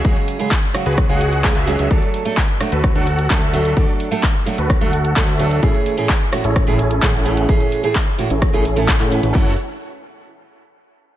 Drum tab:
HH |xxoxxxoxxxoxxxox|xxoxxxoxxxoxxxox|xxoxxxoxxxoxxxox|xxoxxxoxxxoxxxox|
CP |----x-------xx--|----x-------x---|----x-------xx--|----x-------x---|
SD |------r-r-------|------r-r-------|--------r-------|------r-r-------|
BD |o---o---o---o---|o---o---o---o---|o---o---o---o---|o---o---o---o---|

HH |xxoxxxoxxxoxxxox|----------------|
CP |----x-------xx--|----------------|
SD |--------r-------|----------------|
BD |o---o---o---o---|o---------------|